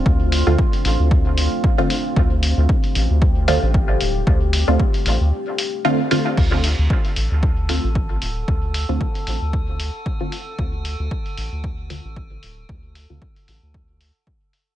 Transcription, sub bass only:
X:1
M:4/4
L:1/16
Q:"Swing 16ths" 1/4=114
K:Dm
V:1 name="Sub bass" clef=bass
D,,3 D,, z2 A,,, D,,4 z4 z | D,,3 D,, z2 A,,, D,,4 A,,,3 D,,,2 | D,,3 D,, z2 A,,, D,, z8 | D,,3 D,, z2 A,,, D,,4 A,,,3 D,,,2 |
D,,3 D,, z2 A,,, D,,4 z4 z | D,,3 D,, z2 A,,, D,,4 A,,,3 D,,,2 | D,,3 D,, z2 A,,, D,,4 z4 z |]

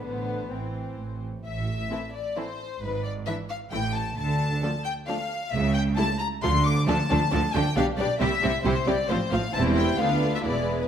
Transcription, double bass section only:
X:1
M:3/4
L:1/8
Q:1/4=133
K:Am
V:1 name="Double bass section" clef=bass
A,,,2 A,,,2 A,,,2 | A,,,2 z4 | ^G,,,2 z2 A,,,2 | D,,2 z4 |
^C,,2 z2 D,,2 | D,, D,, D,, D,, B,,, B,,, | C,, C,, C,, C,, A,,, A,,, | E,,,2 D,,2 E,,,2 |]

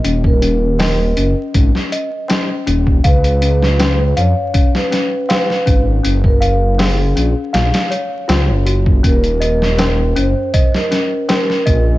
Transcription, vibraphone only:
X:1
M:4/4
L:1/16
Q:1/4=80
K:Ebm
V:1 name="Vibraphone"
z B3 B3 z8 z | c2 c4 d3 c3 c3 z | z B3 A3 z8 z | B2 B4 =c3 B3 B3 z |]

